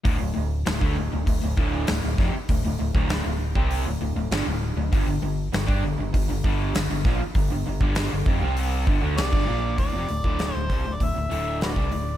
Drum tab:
HH |o---o---o---o---|o---o---o---o---|o---o---o---o---|o---o---o---o---|
SD |----o-------o-o-|----o-------o---|----o-------o-o-|----o-------o---|
BD |o----o--o-o---o-|o--o---o--------|o----o--o-o---o-|o--o--o---o--o--|

HH |o-o-o-o-o-o-o-o-|
SD |----o-------o---|
BD |o--o--o-o----o--|